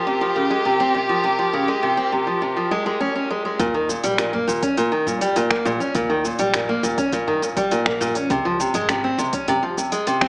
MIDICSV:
0, 0, Header, 1, 5, 480
1, 0, Start_track
1, 0, Tempo, 588235
1, 1014, Time_signature, 4, 2, 24, 8
1, 8388, End_track
2, 0, Start_track
2, 0, Title_t, "String quartet"
2, 0, Program_c, 0, 48
2, 0, Note_on_c, 0, 65, 71
2, 0, Note_on_c, 0, 67, 84
2, 0, Note_on_c, 0, 70, 90
2, 2935, Note_off_c, 0, 70, 0
2, 2936, Note_off_c, 0, 65, 0
2, 2936, Note_off_c, 0, 67, 0
2, 8388, End_track
3, 0, Start_track
3, 0, Title_t, "Steel-string acoustic guitar"
3, 0, Program_c, 1, 25
3, 55, Note_on_c, 1, 48, 71
3, 163, Note_off_c, 1, 48, 0
3, 173, Note_on_c, 1, 53, 67
3, 282, Note_off_c, 1, 53, 0
3, 291, Note_on_c, 1, 49, 63
3, 401, Note_off_c, 1, 49, 0
3, 411, Note_on_c, 1, 56, 79
3, 521, Note_off_c, 1, 56, 0
3, 532, Note_on_c, 1, 48, 74
3, 641, Note_off_c, 1, 48, 0
3, 653, Note_on_c, 1, 60, 89
3, 762, Note_off_c, 1, 60, 0
3, 771, Note_on_c, 1, 48, 71
3, 881, Note_off_c, 1, 48, 0
3, 891, Note_on_c, 1, 53, 69
3, 1001, Note_off_c, 1, 53, 0
3, 1010, Note_on_c, 1, 48, 74
3, 1120, Note_off_c, 1, 48, 0
3, 1131, Note_on_c, 1, 53, 65
3, 1241, Note_off_c, 1, 53, 0
3, 1251, Note_on_c, 1, 49, 68
3, 1361, Note_off_c, 1, 49, 0
3, 1371, Note_on_c, 1, 56, 85
3, 1481, Note_off_c, 1, 56, 0
3, 1491, Note_on_c, 1, 48, 74
3, 1601, Note_off_c, 1, 48, 0
3, 1609, Note_on_c, 1, 60, 87
3, 1720, Note_off_c, 1, 60, 0
3, 1731, Note_on_c, 1, 48, 66
3, 1841, Note_off_c, 1, 48, 0
3, 1851, Note_on_c, 1, 53, 60
3, 1961, Note_off_c, 1, 53, 0
3, 1972, Note_on_c, 1, 48, 73
3, 2081, Note_off_c, 1, 48, 0
3, 2093, Note_on_c, 1, 53, 63
3, 2202, Note_off_c, 1, 53, 0
3, 2213, Note_on_c, 1, 56, 85
3, 2322, Note_off_c, 1, 56, 0
3, 2333, Note_on_c, 1, 56, 82
3, 2442, Note_off_c, 1, 56, 0
3, 2451, Note_on_c, 1, 61, 87
3, 2561, Note_off_c, 1, 61, 0
3, 2574, Note_on_c, 1, 61, 64
3, 2682, Note_off_c, 1, 61, 0
3, 2696, Note_on_c, 1, 56, 70
3, 2805, Note_off_c, 1, 56, 0
3, 2815, Note_on_c, 1, 56, 63
3, 2923, Note_off_c, 1, 56, 0
3, 2933, Note_on_c, 1, 46, 105
3, 3042, Note_off_c, 1, 46, 0
3, 3054, Note_on_c, 1, 51, 72
3, 3162, Note_off_c, 1, 51, 0
3, 3174, Note_on_c, 1, 46, 70
3, 3283, Note_off_c, 1, 46, 0
3, 3294, Note_on_c, 1, 55, 94
3, 3402, Note_off_c, 1, 55, 0
3, 3415, Note_on_c, 1, 46, 107
3, 3523, Note_off_c, 1, 46, 0
3, 3535, Note_on_c, 1, 58, 71
3, 3649, Note_off_c, 1, 58, 0
3, 3652, Note_on_c, 1, 46, 89
3, 3761, Note_off_c, 1, 46, 0
3, 3773, Note_on_c, 1, 61, 63
3, 3882, Note_off_c, 1, 61, 0
3, 3896, Note_on_c, 1, 46, 101
3, 4003, Note_off_c, 1, 46, 0
3, 4013, Note_on_c, 1, 51, 78
3, 4122, Note_off_c, 1, 51, 0
3, 4135, Note_on_c, 1, 46, 73
3, 4243, Note_off_c, 1, 46, 0
3, 4253, Note_on_c, 1, 55, 98
3, 4362, Note_off_c, 1, 55, 0
3, 4375, Note_on_c, 1, 46, 106
3, 4483, Note_off_c, 1, 46, 0
3, 4493, Note_on_c, 1, 58, 78
3, 4608, Note_off_c, 1, 58, 0
3, 4613, Note_on_c, 1, 46, 96
3, 4722, Note_off_c, 1, 46, 0
3, 4734, Note_on_c, 1, 61, 78
3, 4842, Note_off_c, 1, 61, 0
3, 4855, Note_on_c, 1, 46, 100
3, 4963, Note_off_c, 1, 46, 0
3, 4974, Note_on_c, 1, 51, 78
3, 5082, Note_off_c, 1, 51, 0
3, 5097, Note_on_c, 1, 46, 67
3, 5204, Note_off_c, 1, 46, 0
3, 5217, Note_on_c, 1, 55, 97
3, 5324, Note_off_c, 1, 55, 0
3, 5338, Note_on_c, 1, 46, 99
3, 5444, Note_off_c, 1, 46, 0
3, 5459, Note_on_c, 1, 58, 74
3, 5571, Note_off_c, 1, 58, 0
3, 5574, Note_on_c, 1, 46, 102
3, 5683, Note_off_c, 1, 46, 0
3, 5696, Note_on_c, 1, 61, 75
3, 5803, Note_off_c, 1, 61, 0
3, 5818, Note_on_c, 1, 46, 100
3, 5924, Note_off_c, 1, 46, 0
3, 5937, Note_on_c, 1, 51, 74
3, 6044, Note_off_c, 1, 51, 0
3, 6057, Note_on_c, 1, 46, 75
3, 6164, Note_off_c, 1, 46, 0
3, 6177, Note_on_c, 1, 55, 92
3, 6284, Note_off_c, 1, 55, 0
3, 6296, Note_on_c, 1, 46, 94
3, 6403, Note_off_c, 1, 46, 0
3, 6417, Note_on_c, 1, 58, 72
3, 6530, Note_off_c, 1, 58, 0
3, 6534, Note_on_c, 1, 46, 108
3, 6642, Note_off_c, 1, 46, 0
3, 6657, Note_on_c, 1, 61, 76
3, 6764, Note_off_c, 1, 61, 0
3, 6777, Note_on_c, 1, 48, 101
3, 6884, Note_off_c, 1, 48, 0
3, 6896, Note_on_c, 1, 53, 76
3, 7003, Note_off_c, 1, 53, 0
3, 7017, Note_on_c, 1, 48, 76
3, 7124, Note_off_c, 1, 48, 0
3, 7137, Note_on_c, 1, 56, 92
3, 7244, Note_off_c, 1, 56, 0
3, 7258, Note_on_c, 1, 48, 101
3, 7364, Note_off_c, 1, 48, 0
3, 7376, Note_on_c, 1, 60, 73
3, 7489, Note_off_c, 1, 60, 0
3, 7495, Note_on_c, 1, 48, 93
3, 7603, Note_off_c, 1, 48, 0
3, 7616, Note_on_c, 1, 61, 72
3, 7723, Note_off_c, 1, 61, 0
3, 7736, Note_on_c, 1, 48, 107
3, 7843, Note_off_c, 1, 48, 0
3, 7855, Note_on_c, 1, 53, 75
3, 7963, Note_off_c, 1, 53, 0
3, 7977, Note_on_c, 1, 48, 72
3, 8084, Note_off_c, 1, 48, 0
3, 8095, Note_on_c, 1, 56, 91
3, 8203, Note_off_c, 1, 56, 0
3, 8216, Note_on_c, 1, 48, 105
3, 8323, Note_off_c, 1, 48, 0
3, 8334, Note_on_c, 1, 60, 77
3, 8388, Note_off_c, 1, 60, 0
3, 8388, End_track
4, 0, Start_track
4, 0, Title_t, "Upright bass"
4, 0, Program_c, 2, 32
4, 2933, Note_on_c, 2, 39, 92
4, 3223, Note_off_c, 2, 39, 0
4, 3297, Note_on_c, 2, 34, 90
4, 3585, Note_off_c, 2, 34, 0
4, 3656, Note_on_c, 2, 39, 90
4, 3731, Note_off_c, 2, 39, 0
4, 4138, Note_on_c, 2, 43, 73
4, 4212, Note_off_c, 2, 43, 0
4, 4617, Note_on_c, 2, 34, 97
4, 4692, Note_off_c, 2, 34, 0
4, 4854, Note_on_c, 2, 39, 94
4, 5144, Note_off_c, 2, 39, 0
4, 5215, Note_on_c, 2, 34, 85
4, 5505, Note_off_c, 2, 34, 0
4, 5573, Note_on_c, 2, 39, 81
4, 5650, Note_off_c, 2, 39, 0
4, 6413, Note_on_c, 2, 34, 82
4, 6703, Note_off_c, 2, 34, 0
4, 6774, Note_on_c, 2, 37, 94
4, 7064, Note_off_c, 2, 37, 0
4, 7131, Note_on_c, 2, 32, 88
4, 7423, Note_off_c, 2, 32, 0
4, 7493, Note_on_c, 2, 37, 78
4, 7570, Note_off_c, 2, 37, 0
4, 7977, Note_on_c, 2, 41, 79
4, 8052, Note_off_c, 2, 41, 0
4, 8388, End_track
5, 0, Start_track
5, 0, Title_t, "Drums"
5, 2934, Note_on_c, 9, 36, 109
5, 2934, Note_on_c, 9, 45, 77
5, 2934, Note_on_c, 9, 46, 47
5, 2942, Note_on_c, 9, 69, 34
5, 3016, Note_off_c, 9, 36, 0
5, 3016, Note_off_c, 9, 45, 0
5, 3016, Note_off_c, 9, 46, 0
5, 3024, Note_off_c, 9, 69, 0
5, 3180, Note_on_c, 9, 69, 80
5, 3262, Note_off_c, 9, 69, 0
5, 3293, Note_on_c, 9, 46, 55
5, 3301, Note_on_c, 9, 69, 43
5, 3375, Note_off_c, 9, 46, 0
5, 3383, Note_off_c, 9, 69, 0
5, 3414, Note_on_c, 9, 26, 76
5, 3414, Note_on_c, 9, 46, 44
5, 3422, Note_on_c, 9, 69, 35
5, 3496, Note_off_c, 9, 26, 0
5, 3496, Note_off_c, 9, 46, 0
5, 3503, Note_off_c, 9, 69, 0
5, 3535, Note_on_c, 9, 45, 74
5, 3617, Note_off_c, 9, 45, 0
5, 3664, Note_on_c, 9, 69, 85
5, 3745, Note_off_c, 9, 69, 0
5, 3775, Note_on_c, 9, 36, 98
5, 3775, Note_on_c, 9, 46, 59
5, 3783, Note_on_c, 9, 69, 46
5, 3856, Note_off_c, 9, 36, 0
5, 3857, Note_off_c, 9, 46, 0
5, 3864, Note_off_c, 9, 69, 0
5, 3896, Note_on_c, 9, 46, 44
5, 3903, Note_on_c, 9, 69, 32
5, 3977, Note_off_c, 9, 46, 0
5, 3985, Note_off_c, 9, 69, 0
5, 4134, Note_on_c, 9, 45, 80
5, 4142, Note_on_c, 9, 69, 79
5, 4216, Note_off_c, 9, 45, 0
5, 4223, Note_off_c, 9, 69, 0
5, 4254, Note_on_c, 9, 46, 54
5, 4262, Note_on_c, 9, 69, 45
5, 4336, Note_off_c, 9, 46, 0
5, 4344, Note_off_c, 9, 69, 0
5, 4373, Note_on_c, 9, 46, 45
5, 4381, Note_on_c, 9, 69, 33
5, 4455, Note_off_c, 9, 46, 0
5, 4463, Note_off_c, 9, 69, 0
5, 4492, Note_on_c, 9, 26, 74
5, 4494, Note_on_c, 9, 36, 57
5, 4574, Note_off_c, 9, 26, 0
5, 4576, Note_off_c, 9, 36, 0
5, 4619, Note_on_c, 9, 69, 79
5, 4701, Note_off_c, 9, 69, 0
5, 4739, Note_on_c, 9, 69, 40
5, 4821, Note_off_c, 9, 69, 0
5, 4852, Note_on_c, 9, 46, 42
5, 4855, Note_on_c, 9, 36, 109
5, 4860, Note_on_c, 9, 69, 37
5, 4934, Note_off_c, 9, 46, 0
5, 4936, Note_off_c, 9, 36, 0
5, 4942, Note_off_c, 9, 69, 0
5, 5101, Note_on_c, 9, 69, 81
5, 5182, Note_off_c, 9, 69, 0
5, 5212, Note_on_c, 9, 46, 52
5, 5220, Note_on_c, 9, 69, 44
5, 5294, Note_off_c, 9, 46, 0
5, 5301, Note_off_c, 9, 69, 0
5, 5334, Note_on_c, 9, 26, 77
5, 5334, Note_on_c, 9, 45, 69
5, 5334, Note_on_c, 9, 46, 44
5, 5341, Note_on_c, 9, 69, 36
5, 5415, Note_off_c, 9, 26, 0
5, 5415, Note_off_c, 9, 45, 0
5, 5415, Note_off_c, 9, 46, 0
5, 5423, Note_off_c, 9, 69, 0
5, 5582, Note_on_c, 9, 69, 83
5, 5663, Note_off_c, 9, 69, 0
5, 5694, Note_on_c, 9, 36, 100
5, 5695, Note_on_c, 9, 46, 55
5, 5703, Note_on_c, 9, 69, 46
5, 5776, Note_off_c, 9, 36, 0
5, 5777, Note_off_c, 9, 46, 0
5, 5784, Note_off_c, 9, 69, 0
5, 5814, Note_on_c, 9, 36, 58
5, 5814, Note_on_c, 9, 46, 45
5, 5822, Note_on_c, 9, 69, 37
5, 5895, Note_off_c, 9, 46, 0
5, 5896, Note_off_c, 9, 36, 0
5, 5903, Note_off_c, 9, 69, 0
5, 5935, Note_on_c, 9, 45, 81
5, 6017, Note_off_c, 9, 45, 0
5, 6063, Note_on_c, 9, 69, 81
5, 6144, Note_off_c, 9, 69, 0
5, 6175, Note_on_c, 9, 36, 106
5, 6175, Note_on_c, 9, 46, 55
5, 6183, Note_on_c, 9, 69, 48
5, 6256, Note_off_c, 9, 36, 0
5, 6256, Note_off_c, 9, 46, 0
5, 6264, Note_off_c, 9, 69, 0
5, 6294, Note_on_c, 9, 46, 48
5, 6302, Note_on_c, 9, 69, 35
5, 6376, Note_off_c, 9, 46, 0
5, 6383, Note_off_c, 9, 69, 0
5, 6414, Note_on_c, 9, 26, 75
5, 6495, Note_off_c, 9, 26, 0
5, 6533, Note_on_c, 9, 45, 76
5, 6540, Note_on_c, 9, 69, 85
5, 6614, Note_off_c, 9, 45, 0
5, 6622, Note_off_c, 9, 69, 0
5, 6652, Note_on_c, 9, 46, 53
5, 6660, Note_on_c, 9, 69, 42
5, 6733, Note_off_c, 9, 46, 0
5, 6741, Note_off_c, 9, 69, 0
5, 6773, Note_on_c, 9, 46, 41
5, 6775, Note_on_c, 9, 36, 117
5, 6781, Note_on_c, 9, 69, 36
5, 6855, Note_off_c, 9, 46, 0
5, 6856, Note_off_c, 9, 36, 0
5, 6863, Note_off_c, 9, 69, 0
5, 7020, Note_on_c, 9, 69, 81
5, 7102, Note_off_c, 9, 69, 0
5, 7132, Note_on_c, 9, 46, 52
5, 7140, Note_on_c, 9, 69, 47
5, 7192, Note_on_c, 9, 45, 71
5, 7214, Note_off_c, 9, 46, 0
5, 7222, Note_off_c, 9, 69, 0
5, 7252, Note_on_c, 9, 26, 78
5, 7252, Note_on_c, 9, 46, 42
5, 7260, Note_on_c, 9, 69, 32
5, 7273, Note_off_c, 9, 45, 0
5, 7334, Note_off_c, 9, 26, 0
5, 7334, Note_off_c, 9, 46, 0
5, 7342, Note_off_c, 9, 69, 0
5, 7499, Note_on_c, 9, 69, 86
5, 7581, Note_off_c, 9, 69, 0
5, 7612, Note_on_c, 9, 46, 56
5, 7615, Note_on_c, 9, 36, 111
5, 7620, Note_on_c, 9, 69, 48
5, 7694, Note_off_c, 9, 46, 0
5, 7696, Note_off_c, 9, 36, 0
5, 7701, Note_off_c, 9, 69, 0
5, 7734, Note_on_c, 9, 45, 71
5, 7734, Note_on_c, 9, 46, 46
5, 7741, Note_on_c, 9, 69, 33
5, 7815, Note_off_c, 9, 45, 0
5, 7815, Note_off_c, 9, 46, 0
5, 7823, Note_off_c, 9, 69, 0
5, 7981, Note_on_c, 9, 69, 84
5, 8063, Note_off_c, 9, 69, 0
5, 8095, Note_on_c, 9, 46, 55
5, 8103, Note_on_c, 9, 69, 46
5, 8176, Note_off_c, 9, 46, 0
5, 8184, Note_off_c, 9, 69, 0
5, 8216, Note_on_c, 9, 46, 46
5, 8223, Note_on_c, 9, 69, 36
5, 8297, Note_off_c, 9, 46, 0
5, 8305, Note_off_c, 9, 69, 0
5, 8334, Note_on_c, 9, 26, 78
5, 8334, Note_on_c, 9, 45, 70
5, 8335, Note_on_c, 9, 36, 62
5, 8388, Note_off_c, 9, 26, 0
5, 8388, Note_off_c, 9, 36, 0
5, 8388, Note_off_c, 9, 45, 0
5, 8388, End_track
0, 0, End_of_file